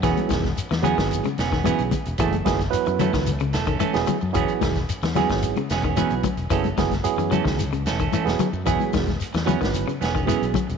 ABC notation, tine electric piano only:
X:1
M:4/4
L:1/16
Q:1/4=111
K:E
V:1 name="Tine electric piano"
[F,B,EG]3 z3 [F,B,EG]3 z3 [F,B,EG]2 z2 | [F,B,EG] z [F,B,EG] z [F,B,EB]4 z4 z [F,B,EG]2 z | [F,B,EG]3 z3 [F,B,EG]3 z3 [F,B,EB]2 z2 | [F,B,EG] z [F,B,EG] z [F,B,EG]4 z4 z [F,B,EG]2 z |
[F,B,EG]3 z3 [F,B,EB]3 z3 [F,B,EG]2 z2 |]